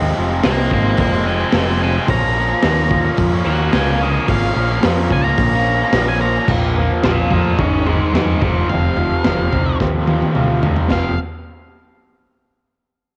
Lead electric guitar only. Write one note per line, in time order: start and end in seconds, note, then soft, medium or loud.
0.45 0.73 F5 medium
0.45 0.72 A#5 medium
0.73 0.99 F5 medium
0.73 0.99 A#5 medium
1.00 1.26 F5 medium
1.00 1.27 A#5 medium
1.27 1.53 F5 medium
1.27 1.54 G#5 medium
1.56 1.81 F5 medium
1.56 1.82 G#5 medium
1.82 2.08 F5 medium
1.82 2.10 G#5 medium
2.10 3.16 A#5 loud
3.45 3.73 C#5 medium
3.45 3.73 A#5 medium
3.72 3.98 F5 medium
3.72 4.00 G#5 loud
4.01 4.27 C#5 medium
4.01 4.29 F5 medium
4.31 4.83 F5 loud
5.12 5.24 G#5 medium
5.24 6.05 A#5 medium
6.08 6.21 G#5 medium
6.21 6.48 A#5 medium
7.04 7.30 D5 medium
7.04 7.29 F5 medium
7.30 7.57 D5 medium
7.30 7.58 F5 medium
7.59 7.85 G#4 medium
7.59 7.86 F5 loud
7.86 8.12 C5 medium
7.86 8.14 D#5 medium
8.14 8.39 C5 medium
8.14 8.40 D#5 loud
8.40 8.67 C5 medium
8.40 8.68 D#5 medium
8.69 9.77 F5 medium
10.91 11.17 F5 medium